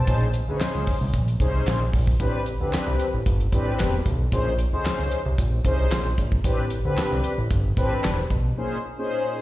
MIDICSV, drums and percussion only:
0, 0, Header, 1, 2, 480
1, 0, Start_track
1, 0, Tempo, 530973
1, 67, Time_signature, 4, 2, 24, 8
1, 8511, End_track
2, 0, Start_track
2, 0, Title_t, "Drums"
2, 65, Note_on_c, 9, 42, 88
2, 67, Note_on_c, 9, 36, 100
2, 156, Note_off_c, 9, 42, 0
2, 157, Note_off_c, 9, 36, 0
2, 302, Note_on_c, 9, 42, 75
2, 393, Note_off_c, 9, 42, 0
2, 546, Note_on_c, 9, 39, 85
2, 547, Note_on_c, 9, 42, 86
2, 554, Note_on_c, 9, 38, 105
2, 557, Note_off_c, 9, 39, 0
2, 557, Note_on_c, 9, 39, 77
2, 637, Note_off_c, 9, 42, 0
2, 644, Note_off_c, 9, 38, 0
2, 647, Note_off_c, 9, 39, 0
2, 783, Note_on_c, 9, 46, 69
2, 789, Note_on_c, 9, 36, 88
2, 874, Note_off_c, 9, 46, 0
2, 879, Note_off_c, 9, 36, 0
2, 1027, Note_on_c, 9, 36, 108
2, 1027, Note_on_c, 9, 42, 77
2, 1117, Note_off_c, 9, 42, 0
2, 1118, Note_off_c, 9, 36, 0
2, 1157, Note_on_c, 9, 42, 53
2, 1248, Note_off_c, 9, 42, 0
2, 1266, Note_on_c, 9, 36, 93
2, 1267, Note_on_c, 9, 42, 80
2, 1356, Note_off_c, 9, 36, 0
2, 1358, Note_off_c, 9, 42, 0
2, 1508, Note_on_c, 9, 42, 96
2, 1510, Note_on_c, 9, 39, 87
2, 1517, Note_on_c, 9, 38, 109
2, 1520, Note_off_c, 9, 39, 0
2, 1520, Note_on_c, 9, 39, 91
2, 1599, Note_off_c, 9, 42, 0
2, 1608, Note_off_c, 9, 38, 0
2, 1611, Note_off_c, 9, 39, 0
2, 1748, Note_on_c, 9, 46, 68
2, 1749, Note_on_c, 9, 36, 91
2, 1838, Note_off_c, 9, 46, 0
2, 1840, Note_off_c, 9, 36, 0
2, 1875, Note_on_c, 9, 36, 95
2, 1965, Note_off_c, 9, 36, 0
2, 1988, Note_on_c, 9, 36, 102
2, 1990, Note_on_c, 9, 42, 88
2, 2078, Note_off_c, 9, 36, 0
2, 2080, Note_off_c, 9, 42, 0
2, 2224, Note_on_c, 9, 42, 67
2, 2314, Note_off_c, 9, 42, 0
2, 2467, Note_on_c, 9, 39, 82
2, 2473, Note_on_c, 9, 42, 85
2, 2480, Note_on_c, 9, 38, 101
2, 2483, Note_off_c, 9, 39, 0
2, 2483, Note_on_c, 9, 39, 79
2, 2564, Note_off_c, 9, 42, 0
2, 2571, Note_off_c, 9, 38, 0
2, 2574, Note_off_c, 9, 39, 0
2, 2707, Note_on_c, 9, 42, 76
2, 2797, Note_off_c, 9, 42, 0
2, 2948, Note_on_c, 9, 36, 98
2, 2949, Note_on_c, 9, 42, 87
2, 3039, Note_off_c, 9, 36, 0
2, 3040, Note_off_c, 9, 42, 0
2, 3079, Note_on_c, 9, 42, 49
2, 3169, Note_off_c, 9, 42, 0
2, 3186, Note_on_c, 9, 36, 89
2, 3190, Note_on_c, 9, 42, 82
2, 3277, Note_off_c, 9, 36, 0
2, 3280, Note_off_c, 9, 42, 0
2, 3427, Note_on_c, 9, 42, 99
2, 3431, Note_on_c, 9, 39, 84
2, 3437, Note_on_c, 9, 38, 120
2, 3440, Note_off_c, 9, 39, 0
2, 3440, Note_on_c, 9, 39, 97
2, 3518, Note_off_c, 9, 42, 0
2, 3527, Note_off_c, 9, 38, 0
2, 3530, Note_off_c, 9, 39, 0
2, 3667, Note_on_c, 9, 42, 70
2, 3668, Note_on_c, 9, 36, 92
2, 3757, Note_off_c, 9, 42, 0
2, 3759, Note_off_c, 9, 36, 0
2, 3907, Note_on_c, 9, 36, 118
2, 3907, Note_on_c, 9, 42, 94
2, 3997, Note_off_c, 9, 36, 0
2, 3998, Note_off_c, 9, 42, 0
2, 4144, Note_on_c, 9, 42, 78
2, 4235, Note_off_c, 9, 42, 0
2, 4386, Note_on_c, 9, 39, 81
2, 4390, Note_on_c, 9, 42, 90
2, 4397, Note_on_c, 9, 38, 105
2, 4400, Note_off_c, 9, 39, 0
2, 4400, Note_on_c, 9, 39, 84
2, 4481, Note_off_c, 9, 42, 0
2, 4488, Note_off_c, 9, 38, 0
2, 4491, Note_off_c, 9, 39, 0
2, 4625, Note_on_c, 9, 42, 64
2, 4715, Note_off_c, 9, 42, 0
2, 4866, Note_on_c, 9, 42, 85
2, 4867, Note_on_c, 9, 36, 100
2, 4957, Note_off_c, 9, 36, 0
2, 4957, Note_off_c, 9, 42, 0
2, 5104, Note_on_c, 9, 36, 90
2, 5106, Note_on_c, 9, 42, 77
2, 5195, Note_off_c, 9, 36, 0
2, 5197, Note_off_c, 9, 42, 0
2, 5345, Note_on_c, 9, 42, 97
2, 5348, Note_on_c, 9, 39, 92
2, 5355, Note_on_c, 9, 38, 106
2, 5357, Note_off_c, 9, 39, 0
2, 5357, Note_on_c, 9, 39, 82
2, 5436, Note_off_c, 9, 42, 0
2, 5445, Note_off_c, 9, 38, 0
2, 5448, Note_off_c, 9, 39, 0
2, 5584, Note_on_c, 9, 42, 71
2, 5587, Note_on_c, 9, 36, 90
2, 5675, Note_off_c, 9, 42, 0
2, 5677, Note_off_c, 9, 36, 0
2, 5712, Note_on_c, 9, 36, 96
2, 5802, Note_off_c, 9, 36, 0
2, 5823, Note_on_c, 9, 42, 92
2, 5825, Note_on_c, 9, 36, 114
2, 5914, Note_off_c, 9, 42, 0
2, 5915, Note_off_c, 9, 36, 0
2, 6059, Note_on_c, 9, 42, 73
2, 6149, Note_off_c, 9, 42, 0
2, 6304, Note_on_c, 9, 39, 76
2, 6307, Note_on_c, 9, 42, 97
2, 6314, Note_on_c, 9, 38, 105
2, 6317, Note_off_c, 9, 39, 0
2, 6317, Note_on_c, 9, 39, 82
2, 6397, Note_off_c, 9, 42, 0
2, 6404, Note_off_c, 9, 38, 0
2, 6407, Note_off_c, 9, 39, 0
2, 6542, Note_on_c, 9, 42, 71
2, 6633, Note_off_c, 9, 42, 0
2, 6785, Note_on_c, 9, 42, 78
2, 6786, Note_on_c, 9, 36, 103
2, 6875, Note_off_c, 9, 42, 0
2, 6876, Note_off_c, 9, 36, 0
2, 7024, Note_on_c, 9, 36, 102
2, 7027, Note_on_c, 9, 42, 76
2, 7114, Note_off_c, 9, 36, 0
2, 7117, Note_off_c, 9, 42, 0
2, 7266, Note_on_c, 9, 42, 92
2, 7268, Note_on_c, 9, 39, 90
2, 7275, Note_on_c, 9, 38, 113
2, 7278, Note_off_c, 9, 39, 0
2, 7278, Note_on_c, 9, 39, 95
2, 7356, Note_off_c, 9, 42, 0
2, 7365, Note_off_c, 9, 38, 0
2, 7368, Note_off_c, 9, 39, 0
2, 7505, Note_on_c, 9, 42, 70
2, 7507, Note_on_c, 9, 36, 89
2, 7596, Note_off_c, 9, 42, 0
2, 7598, Note_off_c, 9, 36, 0
2, 8511, End_track
0, 0, End_of_file